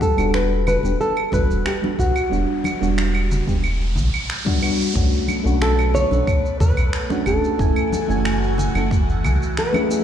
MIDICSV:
0, 0, Header, 1, 7, 480
1, 0, Start_track
1, 0, Key_signature, 2, "minor"
1, 0, Tempo, 659341
1, 1688, Time_signature, 4, 2, 24, 8
1, 7308, End_track
2, 0, Start_track
2, 0, Title_t, "Nylon-string guitar"
2, 0, Program_c, 0, 24
2, 14, Note_on_c, 0, 69, 100
2, 249, Note_off_c, 0, 69, 0
2, 252, Note_on_c, 0, 71, 102
2, 484, Note_off_c, 0, 71, 0
2, 493, Note_on_c, 0, 71, 105
2, 730, Note_off_c, 0, 71, 0
2, 733, Note_on_c, 0, 69, 99
2, 970, Note_off_c, 0, 69, 0
2, 973, Note_on_c, 0, 71, 98
2, 1194, Note_off_c, 0, 71, 0
2, 1214, Note_on_c, 0, 67, 86
2, 1278, Note_off_c, 0, 67, 0
2, 1452, Note_on_c, 0, 66, 75
2, 2141, Note_off_c, 0, 66, 0
2, 4092, Note_on_c, 0, 69, 85
2, 4326, Note_off_c, 0, 69, 0
2, 4329, Note_on_c, 0, 73, 114
2, 4807, Note_off_c, 0, 73, 0
2, 4810, Note_on_c, 0, 71, 100
2, 5181, Note_off_c, 0, 71, 0
2, 5181, Note_on_c, 0, 69, 100
2, 5293, Note_off_c, 0, 69, 0
2, 5293, Note_on_c, 0, 69, 82
2, 5919, Note_off_c, 0, 69, 0
2, 5919, Note_on_c, 0, 67, 82
2, 6221, Note_off_c, 0, 67, 0
2, 6979, Note_on_c, 0, 71, 89
2, 7308, Note_off_c, 0, 71, 0
2, 7308, End_track
3, 0, Start_track
3, 0, Title_t, "FM electric piano"
3, 0, Program_c, 1, 5
3, 0, Note_on_c, 1, 55, 95
3, 0, Note_on_c, 1, 59, 84
3, 0, Note_on_c, 1, 62, 83
3, 0, Note_on_c, 1, 78, 106
3, 96, Note_off_c, 1, 55, 0
3, 100, Note_off_c, 1, 59, 0
3, 103, Note_off_c, 1, 62, 0
3, 107, Note_off_c, 1, 78, 0
3, 120, Note_on_c, 1, 55, 98
3, 126, Note_on_c, 1, 59, 85
3, 133, Note_on_c, 1, 62, 80
3, 141, Note_on_c, 1, 66, 107
3, 576, Note_off_c, 1, 55, 0
3, 579, Note_off_c, 1, 59, 0
3, 582, Note_off_c, 1, 62, 0
3, 586, Note_off_c, 1, 66, 0
3, 602, Note_on_c, 1, 55, 83
3, 609, Note_on_c, 1, 59, 74
3, 616, Note_on_c, 1, 62, 72
3, 623, Note_on_c, 1, 67, 86
3, 665, Note_off_c, 1, 55, 0
3, 668, Note_off_c, 1, 59, 0
3, 672, Note_off_c, 1, 62, 0
3, 675, Note_off_c, 1, 67, 0
3, 957, Note_on_c, 1, 55, 75
3, 963, Note_on_c, 1, 59, 69
3, 970, Note_on_c, 1, 62, 74
3, 977, Note_on_c, 1, 66, 85
3, 1297, Note_off_c, 1, 55, 0
3, 1300, Note_off_c, 1, 59, 0
3, 1303, Note_off_c, 1, 62, 0
3, 1307, Note_off_c, 1, 66, 0
3, 1321, Note_on_c, 1, 55, 70
3, 1329, Note_on_c, 1, 59, 66
3, 1335, Note_on_c, 1, 62, 63
3, 1341, Note_on_c, 1, 66, 81
3, 1384, Note_off_c, 1, 55, 0
3, 1388, Note_off_c, 1, 59, 0
3, 1391, Note_off_c, 1, 62, 0
3, 1394, Note_off_c, 1, 66, 0
3, 1673, Note_on_c, 1, 55, 86
3, 1681, Note_on_c, 1, 59, 79
3, 1689, Note_on_c, 1, 62, 90
3, 1694, Note_on_c, 1, 66, 95
3, 2015, Note_off_c, 1, 55, 0
3, 2019, Note_off_c, 1, 59, 0
3, 2022, Note_off_c, 1, 62, 0
3, 2025, Note_off_c, 1, 66, 0
3, 2040, Note_on_c, 1, 55, 97
3, 2046, Note_on_c, 1, 59, 85
3, 2053, Note_on_c, 1, 62, 86
3, 2060, Note_on_c, 1, 66, 107
3, 2496, Note_off_c, 1, 55, 0
3, 2499, Note_off_c, 1, 59, 0
3, 2502, Note_off_c, 1, 62, 0
3, 2506, Note_off_c, 1, 66, 0
3, 2520, Note_on_c, 1, 55, 80
3, 2527, Note_on_c, 1, 59, 78
3, 2533, Note_on_c, 1, 62, 69
3, 2539, Note_on_c, 1, 67, 86
3, 2584, Note_off_c, 1, 55, 0
3, 2587, Note_off_c, 1, 59, 0
3, 2591, Note_off_c, 1, 62, 0
3, 2593, Note_off_c, 1, 67, 0
3, 3239, Note_on_c, 1, 55, 90
3, 3245, Note_on_c, 1, 59, 87
3, 3253, Note_on_c, 1, 62, 87
3, 3259, Note_on_c, 1, 66, 99
3, 3333, Note_off_c, 1, 55, 0
3, 3337, Note_off_c, 1, 59, 0
3, 3340, Note_off_c, 1, 62, 0
3, 3343, Note_off_c, 1, 66, 0
3, 3356, Note_on_c, 1, 55, 91
3, 3363, Note_on_c, 1, 59, 86
3, 3371, Note_on_c, 1, 62, 82
3, 3377, Note_on_c, 1, 66, 101
3, 3574, Note_off_c, 1, 55, 0
3, 3578, Note_off_c, 1, 59, 0
3, 3581, Note_off_c, 1, 62, 0
3, 3584, Note_off_c, 1, 66, 0
3, 3594, Note_on_c, 1, 57, 91
3, 3602, Note_on_c, 1, 61, 87
3, 3608, Note_on_c, 1, 62, 82
3, 3615, Note_on_c, 1, 66, 100
3, 3935, Note_off_c, 1, 57, 0
3, 3939, Note_off_c, 1, 61, 0
3, 3942, Note_off_c, 1, 62, 0
3, 3946, Note_off_c, 1, 66, 0
3, 3956, Note_on_c, 1, 57, 94
3, 3964, Note_on_c, 1, 61, 92
3, 3969, Note_on_c, 1, 62, 88
3, 3976, Note_on_c, 1, 66, 105
3, 4414, Note_off_c, 1, 57, 0
3, 4418, Note_off_c, 1, 61, 0
3, 4421, Note_off_c, 1, 62, 0
3, 4424, Note_off_c, 1, 66, 0
3, 4440, Note_on_c, 1, 57, 81
3, 4447, Note_on_c, 1, 61, 76
3, 4453, Note_on_c, 1, 62, 77
3, 4460, Note_on_c, 1, 69, 91
3, 4504, Note_off_c, 1, 57, 0
3, 4507, Note_off_c, 1, 61, 0
3, 4510, Note_off_c, 1, 62, 0
3, 4514, Note_off_c, 1, 69, 0
3, 5162, Note_on_c, 1, 57, 92
3, 5169, Note_on_c, 1, 61, 90
3, 5178, Note_on_c, 1, 62, 86
3, 5183, Note_on_c, 1, 66, 101
3, 5255, Note_off_c, 1, 57, 0
3, 5258, Note_off_c, 1, 61, 0
3, 5263, Note_off_c, 1, 62, 0
3, 5266, Note_off_c, 1, 66, 0
3, 5275, Note_on_c, 1, 57, 90
3, 5282, Note_on_c, 1, 61, 85
3, 5290, Note_on_c, 1, 62, 80
3, 5297, Note_on_c, 1, 66, 100
3, 5493, Note_off_c, 1, 57, 0
3, 5497, Note_off_c, 1, 61, 0
3, 5501, Note_off_c, 1, 62, 0
3, 5504, Note_off_c, 1, 66, 0
3, 5515, Note_on_c, 1, 57, 89
3, 5523, Note_on_c, 1, 61, 87
3, 5530, Note_on_c, 1, 64, 87
3, 5537, Note_on_c, 1, 80, 111
3, 5856, Note_off_c, 1, 57, 0
3, 5860, Note_off_c, 1, 61, 0
3, 5863, Note_off_c, 1, 64, 0
3, 5867, Note_off_c, 1, 80, 0
3, 5882, Note_on_c, 1, 57, 96
3, 5890, Note_on_c, 1, 61, 86
3, 5895, Note_on_c, 1, 64, 86
3, 5903, Note_on_c, 1, 80, 100
3, 6337, Note_off_c, 1, 57, 0
3, 6341, Note_off_c, 1, 61, 0
3, 6344, Note_off_c, 1, 64, 0
3, 6348, Note_off_c, 1, 80, 0
3, 6364, Note_on_c, 1, 57, 81
3, 6371, Note_on_c, 1, 61, 77
3, 6377, Note_on_c, 1, 64, 74
3, 6385, Note_on_c, 1, 69, 92
3, 6426, Note_off_c, 1, 57, 0
3, 6429, Note_off_c, 1, 61, 0
3, 6433, Note_off_c, 1, 64, 0
3, 6436, Note_off_c, 1, 69, 0
3, 7080, Note_on_c, 1, 57, 96
3, 7087, Note_on_c, 1, 61, 89
3, 7095, Note_on_c, 1, 64, 85
3, 7102, Note_on_c, 1, 68, 106
3, 7174, Note_off_c, 1, 57, 0
3, 7177, Note_off_c, 1, 61, 0
3, 7181, Note_off_c, 1, 64, 0
3, 7185, Note_off_c, 1, 68, 0
3, 7199, Note_on_c, 1, 57, 96
3, 7205, Note_on_c, 1, 61, 88
3, 7213, Note_on_c, 1, 64, 83
3, 7219, Note_on_c, 1, 68, 101
3, 7308, Note_off_c, 1, 57, 0
3, 7308, Note_off_c, 1, 61, 0
3, 7308, Note_off_c, 1, 64, 0
3, 7308, Note_off_c, 1, 68, 0
3, 7308, End_track
4, 0, Start_track
4, 0, Title_t, "Analog synth pad"
4, 0, Program_c, 2, 89
4, 3605, Note_on_c, 2, 59, 77
4, 3606, Note_on_c, 2, 57, 76
4, 5507, Note_off_c, 2, 59, 0
4, 5528, Note_on_c, 2, 52, 86
4, 5528, Note_on_c, 2, 80, 72
4, 5529, Note_on_c, 2, 66, 90
4, 7308, Note_off_c, 2, 52, 0
4, 7308, Note_off_c, 2, 57, 0
4, 7308, Note_off_c, 2, 66, 0
4, 7308, Note_off_c, 2, 80, 0
4, 7308, End_track
5, 0, Start_track
5, 0, Title_t, "Sub bass"
5, 0, Program_c, 3, 38
5, 128, Note_on_c, 3, 28, 85
5, 564, Note_off_c, 3, 28, 0
5, 608, Note_on_c, 3, 28, 101
5, 699, Note_off_c, 3, 28, 0
5, 966, Note_on_c, 3, 33, 96
5, 1062, Note_off_c, 3, 33, 0
5, 1088, Note_on_c, 3, 28, 87
5, 1179, Note_off_c, 3, 28, 0
5, 1446, Note_on_c, 3, 35, 75
5, 1542, Note_off_c, 3, 35, 0
5, 1686, Note_on_c, 3, 28, 101
5, 1782, Note_off_c, 3, 28, 0
5, 2049, Note_on_c, 3, 28, 81
5, 2484, Note_off_c, 3, 28, 0
5, 2530, Note_on_c, 3, 28, 97
5, 2884, Note_on_c, 3, 35, 101
5, 2895, Note_off_c, 3, 28, 0
5, 2981, Note_off_c, 3, 35, 0
5, 3606, Note_on_c, 3, 35, 99
5, 3702, Note_off_c, 3, 35, 0
5, 3968, Note_on_c, 3, 35, 82
5, 4404, Note_off_c, 3, 35, 0
5, 4449, Note_on_c, 3, 35, 100
5, 4539, Note_off_c, 3, 35, 0
5, 4807, Note_on_c, 3, 40, 94
5, 4902, Note_off_c, 3, 40, 0
5, 4929, Note_on_c, 3, 35, 87
5, 5019, Note_off_c, 3, 35, 0
5, 5286, Note_on_c, 3, 30, 85
5, 5382, Note_off_c, 3, 30, 0
5, 5526, Note_on_c, 3, 30, 97
5, 5622, Note_off_c, 3, 30, 0
5, 5890, Note_on_c, 3, 30, 87
5, 6325, Note_off_c, 3, 30, 0
5, 6368, Note_on_c, 3, 30, 98
5, 6724, Note_on_c, 3, 37, 94
5, 6735, Note_off_c, 3, 30, 0
5, 6821, Note_off_c, 3, 37, 0
5, 7308, End_track
6, 0, Start_track
6, 0, Title_t, "Riser"
6, 0, Program_c, 4, 103
6, 0, Note_on_c, 4, 60, 68
6, 3607, Note_off_c, 4, 60, 0
6, 7308, End_track
7, 0, Start_track
7, 0, Title_t, "Drums"
7, 6, Note_on_c, 9, 63, 79
7, 7, Note_on_c, 9, 36, 97
7, 15, Note_on_c, 9, 82, 72
7, 79, Note_off_c, 9, 63, 0
7, 80, Note_off_c, 9, 36, 0
7, 88, Note_off_c, 9, 82, 0
7, 132, Note_on_c, 9, 75, 78
7, 138, Note_on_c, 9, 82, 38
7, 204, Note_off_c, 9, 75, 0
7, 211, Note_off_c, 9, 82, 0
7, 248, Note_on_c, 9, 26, 90
7, 254, Note_on_c, 9, 82, 31
7, 320, Note_off_c, 9, 26, 0
7, 327, Note_off_c, 9, 82, 0
7, 487, Note_on_c, 9, 75, 70
7, 490, Note_on_c, 9, 64, 73
7, 494, Note_on_c, 9, 82, 65
7, 560, Note_off_c, 9, 75, 0
7, 562, Note_off_c, 9, 64, 0
7, 567, Note_off_c, 9, 82, 0
7, 605, Note_on_c, 9, 63, 57
7, 618, Note_on_c, 9, 82, 41
7, 678, Note_off_c, 9, 63, 0
7, 691, Note_off_c, 9, 82, 0
7, 733, Note_on_c, 9, 82, 28
7, 806, Note_off_c, 9, 82, 0
7, 851, Note_on_c, 9, 75, 71
7, 924, Note_off_c, 9, 75, 0
7, 960, Note_on_c, 9, 64, 76
7, 967, Note_on_c, 9, 36, 94
7, 974, Note_on_c, 9, 82, 67
7, 1033, Note_off_c, 9, 64, 0
7, 1040, Note_off_c, 9, 36, 0
7, 1047, Note_off_c, 9, 82, 0
7, 1097, Note_on_c, 9, 82, 43
7, 1170, Note_off_c, 9, 82, 0
7, 1206, Note_on_c, 9, 26, 93
7, 1206, Note_on_c, 9, 75, 82
7, 1213, Note_on_c, 9, 82, 32
7, 1279, Note_off_c, 9, 26, 0
7, 1279, Note_off_c, 9, 75, 0
7, 1286, Note_off_c, 9, 82, 0
7, 1338, Note_on_c, 9, 63, 73
7, 1411, Note_off_c, 9, 63, 0
7, 1447, Note_on_c, 9, 36, 51
7, 1455, Note_on_c, 9, 82, 72
7, 1520, Note_off_c, 9, 36, 0
7, 1528, Note_off_c, 9, 82, 0
7, 1570, Note_on_c, 9, 75, 75
7, 1577, Note_on_c, 9, 82, 41
7, 1643, Note_off_c, 9, 75, 0
7, 1650, Note_off_c, 9, 82, 0
7, 1695, Note_on_c, 9, 82, 29
7, 1768, Note_off_c, 9, 82, 0
7, 1923, Note_on_c, 9, 63, 91
7, 1929, Note_on_c, 9, 75, 81
7, 1936, Note_on_c, 9, 82, 78
7, 1996, Note_off_c, 9, 63, 0
7, 2002, Note_off_c, 9, 75, 0
7, 2008, Note_off_c, 9, 82, 0
7, 2059, Note_on_c, 9, 82, 41
7, 2132, Note_off_c, 9, 82, 0
7, 2169, Note_on_c, 9, 26, 98
7, 2176, Note_on_c, 9, 82, 32
7, 2242, Note_off_c, 9, 26, 0
7, 2248, Note_off_c, 9, 82, 0
7, 2291, Note_on_c, 9, 75, 78
7, 2363, Note_off_c, 9, 75, 0
7, 2413, Note_on_c, 9, 82, 70
7, 2414, Note_on_c, 9, 64, 86
7, 2486, Note_off_c, 9, 82, 0
7, 2487, Note_off_c, 9, 64, 0
7, 2531, Note_on_c, 9, 36, 60
7, 2534, Note_on_c, 9, 63, 56
7, 2539, Note_on_c, 9, 82, 39
7, 2603, Note_off_c, 9, 36, 0
7, 2607, Note_off_c, 9, 63, 0
7, 2612, Note_off_c, 9, 82, 0
7, 2648, Note_on_c, 9, 75, 79
7, 2655, Note_on_c, 9, 82, 30
7, 2721, Note_off_c, 9, 75, 0
7, 2727, Note_off_c, 9, 82, 0
7, 2881, Note_on_c, 9, 64, 87
7, 2894, Note_on_c, 9, 82, 69
7, 2954, Note_off_c, 9, 64, 0
7, 2967, Note_off_c, 9, 82, 0
7, 3013, Note_on_c, 9, 75, 83
7, 3020, Note_on_c, 9, 82, 43
7, 3086, Note_off_c, 9, 75, 0
7, 3092, Note_off_c, 9, 82, 0
7, 3129, Note_on_c, 9, 26, 98
7, 3136, Note_on_c, 9, 82, 31
7, 3202, Note_off_c, 9, 26, 0
7, 3209, Note_off_c, 9, 82, 0
7, 3249, Note_on_c, 9, 63, 82
7, 3251, Note_on_c, 9, 36, 92
7, 3322, Note_off_c, 9, 63, 0
7, 3323, Note_off_c, 9, 36, 0
7, 3368, Note_on_c, 9, 75, 89
7, 3374, Note_on_c, 9, 82, 77
7, 3440, Note_off_c, 9, 75, 0
7, 3447, Note_off_c, 9, 82, 0
7, 3500, Note_on_c, 9, 82, 42
7, 3573, Note_off_c, 9, 82, 0
7, 3607, Note_on_c, 9, 36, 115
7, 3615, Note_on_c, 9, 82, 44
7, 3680, Note_off_c, 9, 36, 0
7, 3688, Note_off_c, 9, 82, 0
7, 3738, Note_on_c, 9, 82, 22
7, 3811, Note_off_c, 9, 82, 0
7, 3843, Note_on_c, 9, 63, 92
7, 3847, Note_on_c, 9, 75, 79
7, 3854, Note_on_c, 9, 82, 81
7, 3916, Note_off_c, 9, 63, 0
7, 3920, Note_off_c, 9, 75, 0
7, 3927, Note_off_c, 9, 82, 0
7, 3979, Note_on_c, 9, 82, 34
7, 4052, Note_off_c, 9, 82, 0
7, 4089, Note_on_c, 9, 26, 102
7, 4095, Note_on_c, 9, 82, 42
7, 4161, Note_off_c, 9, 26, 0
7, 4168, Note_off_c, 9, 82, 0
7, 4214, Note_on_c, 9, 75, 78
7, 4220, Note_on_c, 9, 82, 21
7, 4286, Note_off_c, 9, 75, 0
7, 4293, Note_off_c, 9, 82, 0
7, 4324, Note_on_c, 9, 64, 88
7, 4336, Note_on_c, 9, 82, 75
7, 4397, Note_off_c, 9, 64, 0
7, 4409, Note_off_c, 9, 82, 0
7, 4449, Note_on_c, 9, 63, 65
7, 4460, Note_on_c, 9, 82, 30
7, 4522, Note_off_c, 9, 63, 0
7, 4532, Note_off_c, 9, 82, 0
7, 4567, Note_on_c, 9, 36, 119
7, 4568, Note_on_c, 9, 75, 75
7, 4574, Note_on_c, 9, 82, 42
7, 4640, Note_off_c, 9, 36, 0
7, 4640, Note_off_c, 9, 75, 0
7, 4647, Note_off_c, 9, 82, 0
7, 4698, Note_on_c, 9, 82, 21
7, 4771, Note_off_c, 9, 82, 0
7, 4807, Note_on_c, 9, 36, 106
7, 4808, Note_on_c, 9, 64, 93
7, 4813, Note_on_c, 9, 82, 78
7, 4880, Note_off_c, 9, 36, 0
7, 4880, Note_off_c, 9, 64, 0
7, 4886, Note_off_c, 9, 82, 0
7, 4930, Note_on_c, 9, 75, 84
7, 4937, Note_on_c, 9, 82, 34
7, 5003, Note_off_c, 9, 75, 0
7, 5009, Note_off_c, 9, 82, 0
7, 5046, Note_on_c, 9, 26, 102
7, 5053, Note_on_c, 9, 82, 44
7, 5119, Note_off_c, 9, 26, 0
7, 5125, Note_off_c, 9, 82, 0
7, 5170, Note_on_c, 9, 60, 70
7, 5170, Note_on_c, 9, 63, 80
7, 5177, Note_on_c, 9, 82, 23
7, 5242, Note_off_c, 9, 60, 0
7, 5242, Note_off_c, 9, 63, 0
7, 5250, Note_off_c, 9, 82, 0
7, 5286, Note_on_c, 9, 75, 85
7, 5287, Note_on_c, 9, 36, 60
7, 5292, Note_on_c, 9, 82, 82
7, 5358, Note_off_c, 9, 75, 0
7, 5360, Note_off_c, 9, 36, 0
7, 5365, Note_off_c, 9, 82, 0
7, 5418, Note_on_c, 9, 82, 32
7, 5490, Note_off_c, 9, 82, 0
7, 5527, Note_on_c, 9, 36, 117
7, 5535, Note_on_c, 9, 82, 46
7, 5600, Note_off_c, 9, 36, 0
7, 5608, Note_off_c, 9, 82, 0
7, 5651, Note_on_c, 9, 75, 79
7, 5658, Note_on_c, 9, 82, 22
7, 5724, Note_off_c, 9, 75, 0
7, 5731, Note_off_c, 9, 82, 0
7, 5769, Note_on_c, 9, 63, 98
7, 5775, Note_on_c, 9, 82, 81
7, 5842, Note_off_c, 9, 63, 0
7, 5848, Note_off_c, 9, 82, 0
7, 5899, Note_on_c, 9, 82, 33
7, 5972, Note_off_c, 9, 82, 0
7, 6009, Note_on_c, 9, 26, 106
7, 6009, Note_on_c, 9, 75, 80
7, 6015, Note_on_c, 9, 82, 45
7, 6081, Note_off_c, 9, 26, 0
7, 6081, Note_off_c, 9, 75, 0
7, 6088, Note_off_c, 9, 82, 0
7, 6138, Note_on_c, 9, 82, 21
7, 6211, Note_off_c, 9, 82, 0
7, 6246, Note_on_c, 9, 60, 55
7, 6246, Note_on_c, 9, 64, 78
7, 6255, Note_on_c, 9, 82, 73
7, 6319, Note_off_c, 9, 60, 0
7, 6319, Note_off_c, 9, 64, 0
7, 6328, Note_off_c, 9, 82, 0
7, 6372, Note_on_c, 9, 75, 78
7, 6374, Note_on_c, 9, 63, 74
7, 6379, Note_on_c, 9, 82, 33
7, 6445, Note_off_c, 9, 75, 0
7, 6447, Note_off_c, 9, 63, 0
7, 6452, Note_off_c, 9, 82, 0
7, 6488, Note_on_c, 9, 36, 127
7, 6497, Note_on_c, 9, 82, 46
7, 6561, Note_off_c, 9, 36, 0
7, 6570, Note_off_c, 9, 82, 0
7, 6620, Note_on_c, 9, 82, 22
7, 6693, Note_off_c, 9, 82, 0
7, 6730, Note_on_c, 9, 75, 77
7, 6731, Note_on_c, 9, 64, 96
7, 6737, Note_on_c, 9, 82, 80
7, 6803, Note_off_c, 9, 64, 0
7, 6803, Note_off_c, 9, 75, 0
7, 6810, Note_off_c, 9, 82, 0
7, 6861, Note_on_c, 9, 82, 36
7, 6934, Note_off_c, 9, 82, 0
7, 6970, Note_on_c, 9, 26, 104
7, 6976, Note_on_c, 9, 82, 47
7, 7042, Note_off_c, 9, 26, 0
7, 7049, Note_off_c, 9, 82, 0
7, 7092, Note_on_c, 9, 63, 89
7, 7093, Note_on_c, 9, 75, 78
7, 7100, Note_on_c, 9, 82, 24
7, 7165, Note_off_c, 9, 63, 0
7, 7166, Note_off_c, 9, 75, 0
7, 7173, Note_off_c, 9, 82, 0
7, 7214, Note_on_c, 9, 82, 92
7, 7287, Note_off_c, 9, 82, 0
7, 7308, End_track
0, 0, End_of_file